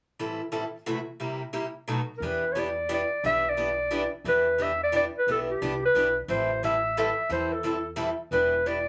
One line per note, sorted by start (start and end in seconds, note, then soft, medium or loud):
0.19 0.40 A2 medium
0.19 0.40 E3 medium
0.19 0.40 G3 medium
0.19 0.40 C4 medium
0.19 0.40 E4 medium
0.19 0.40 A4 medium
0.52 0.63 A2 medium
0.52 0.63 E3 medium
0.52 0.63 G3 medium
0.52 0.63 C4 medium
0.52 0.63 E4 medium
0.52 0.63 A4 medium
0.86 0.97 F#2 medium
0.86 0.97 C3 medium
0.86 0.97 E3 medium
0.86 0.97 A3 medium
0.86 0.97 E4 medium
0.86 0.97 F#4 medium
1.20 1.41 C3 medium
1.20 1.41 G3 medium
1.20 1.41 A#3 medium
1.20 1.41 E4 medium
1.20 1.41 G4 medium
1.53 1.64 C3 medium
1.53 1.65 G3 medium
1.53 1.65 A#3 medium
1.53 1.65 E4 medium
1.53 1.65 G4 medium
1.88 1.99 B2 medium
1.88 1.99 F#3 medium
1.88 1.99 A3 medium
1.88 1.99 D#4 medium
1.88 1.99 F#4 medium
2.17 3.02 E2 medium
2.17 2.27 A#4 medium
2.22 2.43 E3 medium
2.22 2.43 B3 medium
2.22 2.43 D4 medium
2.22 2.43 G4 medium
2.22 2.54 B4 medium
2.52 2.66 E3 medium
2.52 2.67 B3 medium
2.52 2.67 D4 medium
2.52 2.61 C#5 medium
2.57 2.67 G4 medium
2.57 2.91 D5 medium
2.89 3.00 E3 medium
2.89 3.00 B3 medium
2.89 3.00 D4 medium
2.89 3.01 G4 medium
2.94 3.23 D5 medium
3.24 4.05 B1 medium
3.24 3.45 E3 medium
3.24 3.44 B3 medium
3.24 3.45 D4 medium
3.24 3.45 G4 medium
3.24 3.51 E5 loud
3.49 4.15 D5 medium
3.57 3.68 E3 medium
3.57 3.68 B3 medium
3.57 3.69 D4 medium
3.57 3.69 G4 medium
3.91 4.02 E3 medium
3.91 4.02 B3 medium
3.91 4.02 D4 medium
3.91 4.03 G4 medium
4.24 5.06 E2 medium
4.24 4.46 E3 medium
4.24 4.46 B3 medium
4.24 4.46 D4 medium
4.24 4.47 G4 medium
4.24 4.64 B4 medium
4.58 4.70 E3 medium
4.58 4.70 B3 medium
4.58 4.70 D4 medium
4.58 4.70 G4 medium
4.63 4.82 E5 medium
4.83 4.94 D5 medium
4.92 5.04 E3 medium
4.92 5.04 B3 medium
4.92 5.04 D4 medium
4.92 5.04 G4 medium
4.96 5.05 D5 medium
5.18 5.28 B4 medium
5.27 5.54 B1 medium
5.27 5.48 E3 medium
5.27 5.49 B3 medium
5.27 5.48 D4 medium
5.27 5.49 G4 medium
5.31 5.40 A4 medium
5.50 5.81 G4 medium
5.61 5.90 C2 medium
5.61 5.72 E3 medium
5.61 5.72 B3 medium
5.61 5.72 D4 medium
5.61 5.73 G4 medium
5.85 6.15 B4 medium
5.94 6.23 B1 medium
5.94 6.06 E3 medium
5.94 6.06 B3 medium
5.94 6.07 D4 medium
5.94 6.07 G4 medium
6.28 7.10 A1 medium
6.28 6.49 E3 medium
6.28 6.50 G3 medium
6.28 6.50 C4 medium
6.28 6.50 E4 medium
6.28 6.50 A4 medium
6.28 6.61 C5 medium
6.63 6.74 E3 medium
6.63 6.74 G3 medium
6.63 6.75 C4 medium
6.63 6.74 E4 medium
6.63 6.75 A4 medium
6.63 6.95 E5 medium
6.97 7.08 E3 medium
6.97 7.08 G3 medium
6.97 7.08 C4 medium
6.97 7.08 E4 medium
6.97 7.08 A4 medium
6.97 7.29 E5 medium
7.29 8.11 E2 medium
7.29 7.51 E3 medium
7.29 7.51 G3 medium
7.29 7.51 C4 medium
7.29 7.51 E4 medium
7.29 7.52 A4 medium
7.29 7.55 C5 medium
7.53 7.91 A4 medium
7.63 7.75 E3 medium
7.63 7.75 G3 medium
7.63 7.75 C4 medium
7.63 7.75 E4 medium
7.63 7.76 A4 medium
7.96 8.08 E3 medium
7.96 8.08 G3 medium
7.96 8.08 C4 medium
7.96 8.08 E4 loud
7.96 8.09 A4 medium
8.31 8.88 E1 medium
8.31 8.53 E3 medium
8.31 8.53 B3 medium
8.31 8.53 D4 medium
8.31 8.53 G4 medium
8.31 8.68 B4 medium
8.66 8.77 E3 medium
8.66 8.77 B3 medium
8.66 8.77 D4 medium
8.66 8.78 G4 medium
8.66 8.88 D5 loud